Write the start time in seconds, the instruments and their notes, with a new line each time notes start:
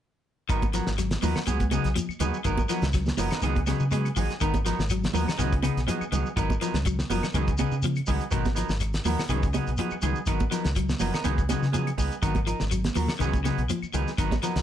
0.49 fingered electric bass G#1, clean electric guitar D#3 F#3 B3 D#4 A#4, kick, closed hi-hat, claves, shekere
0.62 kick, closed hi-hat, high conga, shekere
0.73 clean electric guitar F3 F#3 B3 A#4, snare, closed hi-hat, shekere
0.87 fingered electric bass G#1, snare, low conga, shekere
0.98 clean electric guitar F#3, snare, closed hi-hat, claves, shekere
1.11 snare, closed hi-hat, high conga, shekere
1.22 fingered electric bass D#2, clean electric guitar F3 F#3 B3 D#4 A#4, open hi-hat, high conga, low conga, shekere
1.36 snare, claves, shekere
1.47 fingered electric bass C#2, clean electric guitar F#3 B3 G#4, muted clean electric guitar stroke, closed hi-hat, high conga, shekere
1.60 kick, closed hi-hat, high conga, shekere
1.71 clean electric guitar C#3 F#3 B3 D#4 G#4, closed hi-hat, high conga, claves, shekere
1.84 fingered electric bass B1, snare, closed hi-hat, shekere
1.95 clean electric guitar F3, closed hi-hat, high conga, shekere
2.09 muted fingered electric bass stroke, claves, shekere
2.20 fingered electric bass D#2, clean electric guitar D#3 F#3 B3 D#4 G#4, closed hi-hat, low conga, shekere
2.34 shekere
2.44 fingered electric bass G#1, clean electric guitar D#3 F#3 B3 D#4 A#4, kick, closed hi-hat, claves, shekere
2.58 kick, high conga, shekere
2.69 clean electric guitar F3 F#3 B3 D#4 A#4, snare, closed hi-hat, shekere
2.82 fingered electric bass C#2, snare, closed hi-hat, low conga, shekere
2.93 clean electric guitar F#3, kick, snare, closed hi-hat, claves, shekere
3.06 snare, high conga, shekere
3.17 fingered electric bass F#1, clean electric guitar F3 F#3 B3 D#4 A#4, open hi-hat, high conga, low conga, shekere
3.30 clean electric guitar B3 D#4 A#4, snare, closed hi-hat, claves, shekere
3.42 fingered electric bass C#2, clean electric guitar D#3 F#3 B3 D#4 G#4, closed hi-hat, high conga, shekere
3.56 kick, closed hi-hat, high conga, shekere
3.67 clean electric guitar C#3 F#3 B3 D#4 G#4, snare, closed hi-hat, high conga, claves, shekere
3.80 fingered electric bass C#3, shekere
3.91 clean electric guitar F#3 G#3 B3 G#4, muted clean electric guitar stroke, closed hi-hat, high conga, shekere
4.05 closed hi-hat, claves, shekere
4.16 fingered electric bass A#1, clean electric guitar D#3 F#3 D#4 G#4, muted clean electric guitar stroke, kick, open hi-hat, low conga, shekere
4.30 snare, closed hi-hat, shekere
4.41 fingered electric bass G#1, clean electric guitar D#3 B3 D#4 A#4, muted clean electric guitar stroke, kick, closed hi-hat, claves, shekere
4.54 kick, closed hi-hat, high conga, shekere
4.65 clean electric guitar F3 F#3 B3 D#4 A#4, snare, closed hi-hat, shekere
4.79 fingered electric bass G#1, snare, shekere
4.89 clean electric guitar F#3, closed hi-hat, claves, shekere
5.03 snare, closed hi-hat, high conga, shekere
5.13 fingered electric bass D#2, clean electric guitar F3 F#3 B3 D#4 A#4, open hi-hat, high conga, low conga, shekere
5.26 clean electric guitar D#4 A#4, muted clean electric guitar stroke, muted fingered electric bass stroke, snare, claves, shekere
5.38 fingered electric bass C#2, clean electric guitar D#3 F#3 B3 D#4 G#4, closed hi-hat, shekere
5.52 kick, closed hi-hat, shekere
5.63 clean electric guitar C#3 B3 D#4 G#4, closed hi-hat, high conga, claves, shekere
5.77 fingered electric bass B1, snare, closed hi-hat, shekere
5.87 clean electric guitar F3 F#3 B3 D#4 G#4, closed hi-hat, high conga, shekere
6.01 muted fingered electric bass stroke, claves, shekere
6.12 fingered electric bass C#2, clean electric guitar D#3 F#3 B3 D#4 G#4, closed hi-hat, low conga, shekere
6.26 shekere
6.36 fingered electric bass G#1, clean electric guitar D#3 F#3 B3 D#4 A#4, kick, closed hi-hat, claves, shekere
6.50 kick, high conga, shekere
6.61 clean electric guitar F3 F#3 B3 D#4 A#4, snare, closed hi-hat, shekere
6.74 fingered electric bass C#2, snare, closed hi-hat, low conga, shekere
6.85 clean electric guitar F#3, kick, closed hi-hat, claves, shekere
6.99 snare, shekere
7.10 fingered electric bass F#1, clean electric guitar F3 F#3 B3 D#4 A#4, open hi-hat, high conga, low conga, shekere
7.23 snare, closed hi-hat, claves, shekere
7.34 fingered electric bass C#2, clean electric guitar D#3 F#3 B3 D#4 G#4, closed hi-hat, high conga, shekere
7.48 kick, closed hi-hat, shekere
7.58 clean electric guitar C#3 B3 D#4 G#4, muted clean electric guitar stroke, closed hi-hat, high conga, claves, shekere
7.72 fingered electric bass C#3, shekere
7.82 clean electric guitar F3, closed hi-hat, high conga, shekere
7.96 closed hi-hat, claves, shekere
8.07 fingered electric bass C#2, clean electric guitar D#3 F#3 B3 D#4 G#4, kick, open hi-hat, low conga, shekere
8.20 closed hi-hat, shekere
8.31 fingered electric bass G#1, clean electric guitar B2 F#3 B3 D#4 A#4, kick, closed hi-hat, claves, shekere
8.45 kick, snare, closed hi-hat, high conga, shekere
8.55 clean electric guitar F3 F#3 B3 D#4 A#4, snare, closed hi-hat, shekere
8.69 fingered electric bass G#1, snare, shekere
8.80 muted clean electric guitar stroke, closed hi-hat, claves, shekere
8.93 snare, closed hi-hat, shekere
9.05 fingered electric bass D#2, clean electric guitar F3 F#3 B3 D#4 A#4, open hi-hat, high conga, low conga, shekere
9.18 muted fingered electric bass stroke, snare, claves, shekere
9.29 fingered electric bass C#2, clean electric guitar D#3 F#3 B3 D#4 G#4, closed hi-hat, shekere
9.43 kick, closed hi-hat, shekere
9.53 clean electric guitar C#3 F#3 B3 D#4 G#4, closed hi-hat, high conga, claves, shekere
9.67 fingered electric bass B1, closed hi-hat, shekere
9.77 clean electric guitar F3 F#3 B3 D#4 G#4, closed hi-hat, high conga, shekere
9.91 muted fingered electric bass stroke, claves, shekere
10.02 fingered electric bass C#2, clean electric guitar D#3 F#3 B3 D#4 G#4, closed hi-hat, low conga, shekere
10.15 shekere
10.26 fingered electric bass G#1, clean electric guitar D#3 F#3 B3 D#4 A#4, kick, closed hi-hat, claves, shekere
10.40 kick, high conga, shekere
10.50 clean electric guitar F3 F#3 B3 D#4 A#4, snare, closed hi-hat, shekere
10.64 fingered electric bass C#2, snare, closed hi-hat, shekere
10.76 clean electric guitar F#3, kick, closed hi-hat, claves, shekere
10.89 snare, high conga, shekere
10.99 fingered electric bass F#1, clean electric guitar F3 F#3 B3 D#4 A#4, open hi-hat, high conga, low conga, shekere
11.14 clean electric guitar B3 D#4 A#4, snare, closed hi-hat, claves, shekere
11.24 fingered electric bass C#2, clean electric guitar D#3 F#3 B3 D#4 G#4, closed hi-hat, high conga, shekere
11.38 kick, closed hi-hat, shekere
11.49 clean electric guitar C#3 F#3 B3 D#4 G#4, snare, closed hi-hat, high conga, claves, shekere
11.62 fingered electric bass C#3, snare, shekere
11.72 clean electric guitar F3 F#3 B3 D#4 G#4, closed hi-hat, high conga, shekere
11.87 closed hi-hat, claves, shekere
11.98 fingered electric bass C#2, clean electric guitar B3 D#4 G#4, kick, open hi-hat, low conga, shekere
12.12 closed hi-hat, shekere
12.22 fingered electric bass G#1, clean electric guitar D#3 F#3 B3 D#4 A#4, kick, closed hi-hat, claves, shekere
12.35 kick, closed hi-hat, high conga, shekere
12.47 clean electric guitar F3 D#4 A#4, closed hi-hat, shekere
12.60 fingered electric bass G#1, snare, low conga, shekere
12.71 clean electric guitar F#3, closed hi-hat, claves, shekere
12.84 snare, closed hi-hat, high conga, shekere
12.95 fingered electric bass D#2, clean electric guitar F3 F#3 A#4, muted clean electric guitar stroke, open hi-hat, high conga, low conga, shekere
13.08 snare, claves, shekere
13.19 fingered electric bass C#2, clean electric guitar D#3 F#3 B3 D#4 G#4, snare, closed hi-hat, shekere
13.33 kick, closed hi-hat, high conga, shekere
13.44 clean electric guitar C#3 F#3 B3 D#4 G#4, snare, closed hi-hat, high conga, claves, shekere
13.58 fingered electric bass B1, closed hi-hat, shekere
13.69 clean electric guitar F3, closed hi-hat, high conga, shekere
13.82 muted fingered electric bass stroke, claves, shekere
13.93 fingered electric bass C#2, clean electric guitar D#3 F#3 B3 D#4 G#4, closed hi-hat, low conga, shekere
14.07 snare, shekere
14.18 fingered electric bass G#1, clean electric guitar D#3 F#3 B3 D#4 A#4, kick, closed hi-hat, claves, shekere
14.31 kick, snare, high conga, shekere
14.42 clean electric guitar F3 F#3 B3 D#4 A#4, snare, closed hi-hat, shekere
14.56 fingered electric bass C#2, snare, closed hi-hat, low conga, shekere